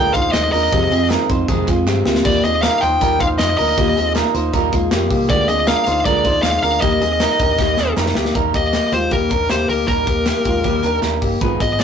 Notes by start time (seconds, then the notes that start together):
Already playing: D2 D3 G#3 A#3 D4 F4 A#4 G5 G6
0.12 D2 D#4 F4 C5 F5 F6, kick, closed hi-hat
0.17 A#3 D4
0.32 D#2 G#3 A#3 D4 D#5 D#6, snare, clap, closed hi-hat
0.37 F4
0.51 D#2 D4 F4 A#4 D#5 D#6, open hi-hat
0.56 A#3
0.71 F2 C3 D#3 G#3 C4 F4 G4, kick, closed hi-hat
0.90 F2 D#3 G#3 C4 F4 G#4, closed hi-hat
1.09 D#3 G#3 C4 D#4 F4 A#4, snare, clap, closed hi-hat
1.29 F2 D#3 G#3 C4 D#4 F4 C5, kick, closed hi-hat
1.48 F2 C3 D#3 G#3 C4 F4 G#4, kick, closed hi-hat
1.67 F2 D#3 G#3 C4 F4, kick, clap, closed hi-hat
1.87 G2 D#3 G#3 C4 F4 G4, snare, clap
2.05 D2 D#3 G#3 A#3 C4 F4 G4, snare
2.15 snare
2.25 D#2 D#3 G3 A#3 D#4 F4 G4 D5 D6, kick, splash
2.43 D#2 A#3 C4 D#4 F4 G#4 D#5 D#6, closed hi-hat
2.62 G3 A#3 D#4 F4 A#4 F5 F6, snare, clap, closed hi-hat
2.81 D#2 A#3 D#4 F4 C5 G5 G6, closed hi-hat
3.00 D#2 D#3 G3 A#3 D#4 F4 A#4, kick, closed hi-hat
3.19 D#2 A#3 D#4 F4 C5 F5 F6, kick, closed hi-hat
3.38 F2 G3 A#3 D#4 F4 D#5 D#6, snare, clap, closed hi-hat
3.57 D2 A#3 D4 D#4 F4 A#4 D#5 D#6, open hi-hat
3.77 D#2 D#3 G3 A#3 D#4 F4 G4, kick, closed hi-hat
3.96 D#2 A#3 C4 D#4 F4 G#4, closed hi-hat
4.15 G3 A#3 D#4 F4 A#4, snare, clap, closed hi-hat
4.34 D#2 A#3 D#4 F4 C5, closed hi-hat
4.52 D#2 D#3 G3 A#3 D#4 F4 A#4, kick, closed hi-hat
4.71 D#2 G#3 A#3 D#4 F4, kick, closed hi-hat
4.90 F2 G3 A#3 D#4 F4 G4, snare, clap, closed hi-hat
5.10 C2 A#3 D#4 F4 G4, kick, open hi-hat
5.28 D2 D3 G#3 A#3 D4 F4 G4 D5 D6, kick, closed hi-hat
5.47 D2 A#3 C4 D4 F4 G#4 D#5 D#6, closed hi-hat
5.67 G#3 A#3 D4 F4 A#4 F5 F6, snare, clap, closed hi-hat
5.86 D2 A#3 D4 D#4 F4 C5, closed hi-hat
6.05 D2 D3 G#3 A#3 D4 F4 A#4 D5 D6, kick, closed hi-hat
6.24 D2 A#3 D4 D#4 F4 C5, kick, closed hi-hat
6.42 D#2 G#3 A#3 D4 F4 F5 F6, snare, clap, closed hi-hat
6.62 D2 A#3 D4 F4 A#4 F5 F6, open hi-hat
6.81 D#2 D#3 G3 A#3 D#4 G4 D#5 D#6, kick, closed hi-hat
7.01 D#2 A#3 C4 D#4 G4 G#4, closed hi-hat
7.19 G3 A#3 D#4 G4 A#4, snare, clap, closed hi-hat
7.39 D#2 A#3 D4 D#4 G4 A#4, kick, closed hi-hat
7.58 D#2 D#3 G3 A#3 D#4 G4, kick, snare
7.77 D#2 A#3 C4 D#4 G4 G#4, snare, clap
7.96 F2 G3 A#3 D#4 G4 A#4, snare, clap
8.06 snare
8.15 D2 A#3 D#4 G4, snare
8.25 snare
8.35 D#2 D#3 G3 A#3 D#4 G4 A#4, kick, closed hi-hat
8.53 D#2 A#3 D#4 G4 D#5, kick, closed hi-hat
8.72 G3 A#3 D#4 G4, snare, clap, closed hi-hat
8.92 D#2 G#3 A#3 D#4 F4 G4 C5, closed hi-hat
9.11 D#2 D#3 G3 A#3 D#4 G4 A#4, kick, closed hi-hat
9.30 D#2 A#3 D4 D#4 G4 A#4, kick, clap, closed hi-hat
9.49 D#2 G3 A#3 D#4 G4 C5, snare, clap, closed hi-hat
9.68 D2 A#3 D#4 G4 A#4, open hi-hat
9.87 D#2 D#3 G3 A#3 D#4 G4 A#4, kick, closed hi-hat
10.06 D#2 A#3 D#4 G4, kick, closed hi-hat
10.25 G3 A#3 D#4 G4, snare, clap, closed hi-hat
10.44 D#2 G#3 A#3 D#4 F4 G4, kick, closed hi-hat
10.63 D#2 D#3 G3 A#3 D#4 G4, kick, closed hi-hat
10.83 D#2 A#3 D4 D#4 G4 A#4, clap, closed hi-hat
11.01 D#2 G3 A#3 D#4 G4, snare, clap, closed hi-hat
11.22 G1 A#3 D#4 G4, kick, open hi-hat
11.41 G#1 G#2 D#3 G#3 B3 D#4 F4 G#4 B4, kick, closed hi-hat
11.60 G#1 G#3 B3 F4 G#4 D#5, kick, closed hi-hat
11.79 G#3 B3 F4 G#4, snare, clap, closed hi-hat